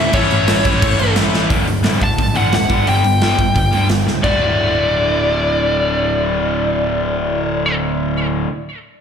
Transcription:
Already playing: distorted electric guitar A2 E3 A3 C#4 E4 A4, overdriven electric guitar A3, lead electric guitar E5
0.00 overdriven electric guitar A2 E3
0.13 picked electric bass A1, distorted electric guitar A2 E3 A3 C#4 E4 A4, overdriven electric guitar A2 E3, lead electric guitar C#5, kick, crash
0.18 overdriven electric guitar A3
0.31 picked electric bass A1, crash
0.48 picked electric bass A1, snare, crash
0.65 picked electric bass A1, distorted electric guitar A2 E3 A3 C#4 E4 A4, kick, crash
0.82 picked electric bass A1, kick, crash
0.99 picked electric bass A1, distorted electric guitar A2 E3 A3 C#4 E4 A4, crash
1.16 picked electric bass A1, distorted electric guitar A2 E3 A3 C#4 E4 A4, snare, crash
1.34 picked electric bass A1, overdriven electric guitar A2 E3 A3, snare
1.50 picked electric bass D1, distorted electric guitar D2 A2 D3, kick, open hi-hat
1.68 picked electric bass D1, distorted electric guitar D2 A2, open hi-hat
1.84 picked electric bass D1, distorted electric guitar D2 A2 D3, snare, open hi-hat
2.01 picked electric bass D1, distorted electric guitar D2 A2, lead electric guitar A5, kick, open hi-hat
2.18 picked electric bass D1, distorted electric guitar D2 A2, kick, open hi-hat
2.34 picked electric bass A1, distorted electric guitar D2 A2 D3, lead electric guitar F#5, open hi-hat
2.52 picked electric bass D1, distorted electric guitar D2 A2, lead electric guitar F#5, snare, open hi-hat
2.70 picked electric bass G1, distorted electric guitar G2 D3 G3, kick, open hi-hat
2.86 picked electric bass G1, distorted electric guitar G2 D3 G3, lead electric guitar G5, open hi-hat
3.04 picked electric bass G1, distorted electric guitar G2 D3, open hi-hat
3.21 picked electric bass G1, distorted electric guitar G2 D3 G3, snare, open hi-hat
3.38 picked electric bass G1, distorted electric guitar G2 D3, kick, open hi-hat
3.55 picked electric bass G1, distorted electric guitar G2 D3, kick, open hi-hat
3.73 picked electric bass D2, distorted electric guitar G2 D3 G3, open hi-hat
3.89 picked electric bass G1, distorted electric guitar G2 D3, snare, open hi-hat
4.07 picked electric bass C#2, distorted electric guitar G2 D3, snare
4.22 picked electric bass D1, distorted electric guitar D2 A2 D3 A3, lead electric guitar D5, kick, floor tom, china
4.26 distorted electric guitar F#4

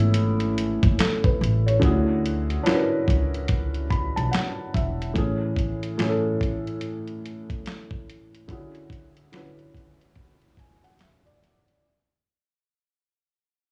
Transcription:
Already playing: upright bass G#1, felt piano A2 E3 A3 B3 C#4 E4 G#4
0.00 closed hi-hat
0.14 closed hi-hat
0.40 closed hi-hat
0.58 closed hi-hat
0.83 upright bass F#1, kick, closed hi-hat
0.99 felt piano A4, snare, clap, closed hi-hat
1.24 felt piano B4, kick
1.41 upright bass A1, closed hi-hat
1.67 felt piano C#5, closed hi-hat
1.80 upright bass D2, felt piano D3 C#4 E4 F#4, kick, closed hi-hat
1.85 felt piano G#4
2.26 closed hi-hat
2.50 closed hi-hat
2.63 felt piano C#4 D4 E4 F#4, snare, closed hi-hat
2.68 felt piano A#4, clap
2.75 felt piano B4
3.08 upright bass C#2, kick, closed hi-hat
3.34 closed hi-hat
3.48 kick, closed hi-hat
3.74 closed hi-hat
3.90 felt piano B5, kick, closed hi-hat
4.16 upright bass B1, felt piano A5, closed hi-hat
4.31 felt piano F#5, snare, clap, closed hi-hat
4.74 upright bass E1, felt piano E5, kick, closed hi-hat
5.02 closed hi-hat
5.14 felt piano A2 E3 C#4, kick, closed hi-hat
5.18 felt piano G#4
5.56 kick, closed hi-hat
5.83 closed hi-hat
5.98 felt piano A2 E3 C#4, snare, clap, closed hi-hat
6.02 felt piano G#4
6.09 felt piano A4
6.41 kick, closed hi-hat
6.67 closed hi-hat
6.81 closed hi-hat
7.07 closed hi-hat
7.25 closed hi-hat
7.50 kick, closed hi-hat
7.66 snare, clap, closed hi-hat
7.91 kick
8.10 closed hi-hat
8.35 closed hi-hat
8.48 felt piano D3 C#4 E4 F#4, kick, closed hi-hat
8.53 felt piano G#4
8.75 closed hi-hat
8.90 kick, closed hi-hat
9.17 closed hi-hat
9.32 felt piano D3 C#4 E4 F#4, snare, clap, closed hi-hat
9.37 felt piano B4
9.59 closed hi-hat
9.74 kick, closed hi-hat
10.01 closed hi-hat
10.15 kick, closed hi-hat
10.41 closed hi-hat
10.57 felt piano G#5, kick, closed hi-hat
10.84 felt piano F#5, closed hi-hat
10.99 felt piano E5, snare, clap, closed hi-hat
11.26 felt piano D5, closed hi-hat
11.43 snare, closed hi-hat
11.68 closed hi-hat

